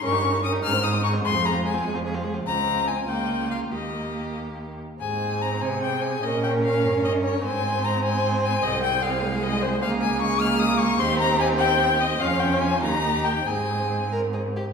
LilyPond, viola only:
\new Staff \with { instrumentName = "Viola" } { \time 6/8 \key aes \major \tempo 4. = 99 des'16 ees'16 des'16 ees'16 des'16 ees'16 ees'16 c'16 ees'16 c'16 ees'16 c'16 | aes16 c'16 aes16 c'16 aes16 c'16 aes16 c'16 aes16 c'16 aes16 c'16 | c'4. bes4. | bes2~ bes8 r8 |
c'2. | des'2. | c'2.~ | c'4. aes4. |
bes4. bes4. | c'2. | des'4. ees'4. | c'2~ c'8 r8 | }